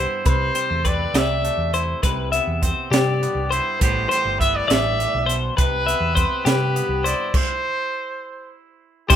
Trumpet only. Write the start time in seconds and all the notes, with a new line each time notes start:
Already playing: C5
0.28 C5
0.87 D5
1.17 E5
2.91 D5
3.51 C5
3.83 C5
4.11 C5
4.40 E5
4.56 D5
4.69 E5
5.58 B4
6.46 B4
7.05 D5
7.36 C5
9.09 G4